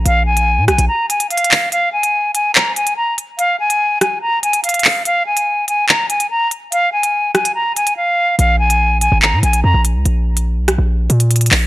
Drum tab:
HH |x-----------------x-----------------x-----x-----------------x-----x-----x---x---x---o-----------|x-----------------x-----------------x-----------------------x-----x-----------------x-----------|x-----------------x-----------------x-----------------------x-----x-----x--x--x--x--o-----------|x-----------------x-----------------x-----------------------x-----x-----------------x-----------|
CP |------------------------------------------------------------------------------------x-----------|------------------------------------------------x-----------------------------------------------|------------------------------------------------------------------------------------x-----------|------------------------------------------------x-----------------------------------------------|
SD |------------------------------------r-----------------------------------------------------------|------------------------------------------------------------------------------------------------|------------------------------------r-----------------------------------------------------------|------------------------------------------------------------------------------------------------|

HH |x-----------------x-----------------x-----x-----------------x-----x-----------------------------|x-----------------x-----------------x-----------------------x-----x-----------------x-----------|x-----------------x-----------------x-----------------------x-----x-----x--x--x--x--------------|
CP |------------------------------------------------------------------------------------------------|------------------------------------------------x-----------------------------------------------|------------------------------------------------------------------------------------x-----------|
SD |------------------------------------r-----------------------------------------------------------|------------------------------------------------------------------------------------------------|------------------------------------r-----------------------------------------------------------|